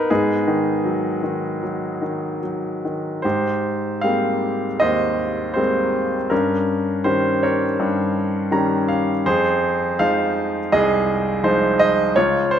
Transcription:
0.00 0.11 B3 soft
0.00 0.11 D#4 soft
0.00 0.12 A#4 medium
0.00 0.12 B4 medium
0.00 0.11 D#5 medium
0.00 0.12 F#5 medium
0.10 3.21 G#2 soft
0.10 2.39 B3 soft
0.10 2.40 D#4 soft
0.10 2.39 G#4 medium
0.47 1.21 D#3 soft
0.85 1.61 F#3 soft
1.23 2.00 D#3 soft
1.63 2.41 F#3 soft
2.02 2.83 D#3 soft
2.42 3.22 F#3 soft
2.85 3.24 D#3 soft
3.22 6.28 G#2 soft
3.22 4.78 G4 soft
3.22 4.05 C5 medium
4.01 4.66 G3 soft
4.01 4.66 G#3 soft
4.01 4.66 A#3 soft
4.01 4.66 C4 soft
4.01 4.83 F5 medium
4.80 6.27 D#2 soft
4.80 5.52 C5 soft
4.80 5.58 D#5 medium
5.54 6.16 G3 soft
5.54 6.17 G#3 soft
5.54 6.16 A#3 soft
5.54 6.16 C4 soft
5.54 6.26 C5 medium
6.30 7.78 G2 soft
6.30 7.04 C#4 soft
6.30 7.08 A#4 medium
7.04 7.64 D#3 soft
7.04 7.64 G3 soft
7.04 7.65 C#4 soft
7.04 7.43 C5 medium
7.43 8.85 A#4 soft
7.43 8.85 C#5 medium
7.80 9.22 G2 medium
8.51 9.10 D#3 soft
8.51 9.11 G3 soft
8.51 9.11 C#4 soft
8.51 8.86 A#5 medium
8.88 9.23 F5 medium
9.26 12.12 F2 medium
9.26 10.69 G#4 medium
9.26 10.02 C5 medium
9.99 10.58 F3 soft
9.99 10.58 G#3 soft
9.99 10.58 D#4 soft
9.99 10.74 F5 medium
10.72 12.12 C2 medium
10.72 12.12 G#4 medium
10.72 11.46 D#5 medium
11.44 12.01 F3 soft
11.44 12.01 G#3 soft
11.44 12.01 D#4 soft
11.44 11.81 C5 medium
11.79 12.17 D#5 medium
12.16 12.59 C#2 medium
12.16 12.59 F4 medium
12.16 12.53 C#5 medium
12.51 12.59 C5 medium

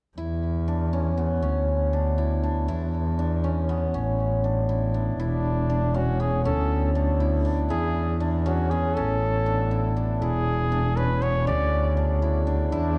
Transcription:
0.18 1.44 E2 medium
0.18 2.17 E4 medium
0.68 0.99 D4 soft
0.93 1.42 C#4 medium
1.17 3.69 B3 medium
1.42 2.70 D2 medium
1.42 1.99 C#4 medium
1.93 2.43 D4 medium
2.18 2.68 E4 medium
2.43 3.18 D4 medium
2.68 3.95 E2 medium
2.68 4.69 E4 medium
3.19 3.50 D4 medium
3.44 3.94 C#4 medium
3.69 6.19 B3 medium
3.94 5.17 A1 medium
3.94 4.50 C#4 medium
4.44 4.94 D4 soft
4.69 5.19 E4 medium
4.94 5.69 D4 soft
5.19 6.47 E1 medium
5.19 5.97 D4 medium
5.19 7.20 E4 medium
5.70 6.00 D4 medium
5.94 6.45 C#4 medium
5.94 6.22 F#4 medium
6.20 8.71 B3 medium
6.20 6.44 G#4 medium
6.45 7.72 D2 medium
6.45 7.01 C#4 medium
6.45 6.91 A4 medium
6.95 7.44 D4 medium
7.20 7.70 E4 medium
7.45 8.20 D4 medium
7.70 8.97 E2 medium
7.70 9.71 E4 medium
7.70 8.17 G#4 medium
8.20 8.52 D4 medium
8.46 8.96 C#4 medium
8.46 8.71 F#4 medium
8.70 11.21 B3 medium
8.70 8.96 G#4 medium
8.94 10.22 A1 medium
8.94 9.52 C#4 medium
8.94 9.95 A4 medium
9.46 9.96 D4 medium
9.71 10.21 E4 medium
9.97 10.71 D4 medium
10.21 11.48 E1 medium
10.21 12.22 E4 medium
10.21 10.98 G#4 medium
10.72 11.03 D4 medium
10.96 12.03 C#4 medium
10.96 11.24 B4 medium
11.22 12.98 B3 medium
11.22 11.46 C#5 medium
11.47 12.73 D2 medium
11.47 12.77 C#3 medium
11.47 11.93 D5 medium
11.97 12.46 D4 medium
12.22 12.72 E4 medium
12.47 12.98 D4 medium
12.71 12.98 E2 medium
12.71 12.98 D4 medium
12.71 12.98 E4 medium

